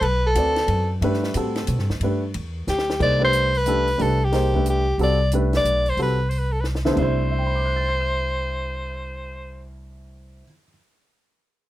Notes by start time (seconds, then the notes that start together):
0.01 B1 A4 B4, ride
0.27 A4
0.35 D2 C4 F#4 B4 D5, hi-hat pedal, ride
0.56 snare, ride
0.68 F#2, ride
1.01 G2 A3 D4 G4 B4, ride
1.13 snare
1.23 snare
1.34 A2 G3 C4 F#4 A4, hi-hat pedal, ride
1.56 snare, ride
1.67 B2, hi-hat pedal, ride
1.78 G2, snare
1.90 D2, snare
2.00 G2 A3 D4 G4 B4, ride
2.34 E2, ride
2.67 D2 G4, snare, hi-hat pedal
2.78 snare
2.90 snare
3.00 C2 A#3 D#4 G#4 C5 D5, kick, crash
3.19 A3 D4 G4 B4
3.25 C5
3.33 closed hi-hat
3.54 B4, open hi-hat
3.66 A3 D4 G4 A4, closed hi-hat
3.87 open hi-hat
3.98 C2 A3 D4 G4 B4, open hi-hat
4.02 A4
4.24 G4
4.32 A#3 D#4 G#4 C5, snare, open hi-hat
4.54 A3 D4 G4 B4, kick
4.66 G4, closed hi-hat
4.98 C2 G3 C4 F#4 A4, open hi-hat
5.03 D5
5.31 A3 D4 G4 B4, closed hi-hat
5.53 D5, snare, open hi-hat
5.64 B1, closed hi-hat
5.86 C5, open hi-hat
5.97 C2 G3 C4 F#4 A4, open hi-hat
6.02 B4
6.30 C5, open hi-hat
6.39 B4
6.52 A4
6.61 B4, snare
6.75 snare
6.85 D3 B3 E4 A4 C5, snare
6.91 C3 A3
6.96 C2 D4 E4 C5, kick, crash
7.02 C5
7.18 cymbal swell
7.31 E5
7.39 G5
7.47 B5
7.55 D6
7.65 F#6
7.76 A6
7.89 C7
8.01 E7